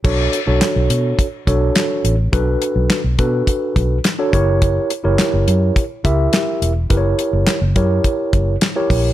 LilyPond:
<<
  \new Staff \with { instrumentName = "Tine electric piano" } { \time 4/4 \key b \minor \tempo 4 = 105 <d' fis' a' cis''>8 r16 <d' fis' a' cis''>4~ <d' fis' a' cis''>16 r8 <d' fis' a' cis''>4~ <d' fis' a' cis''>16 r16 | <d' fis' a' b'>4~ <d' fis' a' b'>16 r16 <d' fis' a' b'>4~ <d' fis' a' b'>16 r8 <d' fis' a' cis''>16 <e' g' ais' cis''>8~ | <e' g' ais' cis''>8 r16 <e' g' ais' cis''>4~ <e' g' ais' cis''>16 r8 <e' g' ais' e''>4~ <e' g' ais' e''>16 r16 | <e' g' ais' b' cis''>4~ <e' g' ais' b' cis''>16 r16 <e' g' ais' cis''>4~ <e' g' ais' cis''>16 r8 <e' g' ais' cis''>8 r16 | }
  \new Staff \with { instrumentName = "Fingered electric bass" } { \clef bass \time 4/4 \key b \minor b,,8 r16 b,,16 r16 b,,16 b,8 r8 b,,8 r8 a,,8 | b,,8 r16 b,,16 r16 b,,16 b,8 r8 b,,8 r8 fis,,8~ | fis,,8 r16 fis,,16 r16 fis,,16 fis,8 r8 cis,8 r8 e,,8 | fis,,8 r16 fis,,16 r16 fis,,16 fis,8 r8 fis,,8 r8 ais,,8 | }
  \new DrumStaff \with { instrumentName = "Drums" } \drummode { \time 4/4 <cymc bd>8 hh8 <hc hh sn>8 hh8 <hh bd>8 <hh bd>8 <hc hh sn>8 hh8 | <hh bd>8 hh8 <hc hh sn>8 <hh bd>8 <hh bd>8 <hh bd>8 <hc hh sn>8 <hh bd>8 | <hh bd>8 hh8 <hc hh sn>8 hh8 <hh bd>8 <hh bd>8 <hc hh sn>8 hh8 | <hh bd>8 hh8 <hc hh sn>8 <hh bd>8 <hh bd>8 <hh bd>8 <hc hh sn>8 <hho bd>8 | }
>>